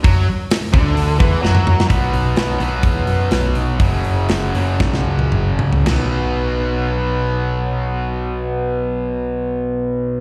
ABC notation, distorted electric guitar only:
X:1
M:4/4
L:1/8
Q:1/4=116
K:Bm
V:1 name="Distorted electric guitar" clef=bass
F, z2 D,2 E, F,2 | [B,,F,B,]3 [B,,F,B,]4- [B,,F,B,] | [F,,C,F,]3 [F,,C,F,]4- [F,,C,F,] | [B,,F,B,]8- |
[B,,F,B,]8 |]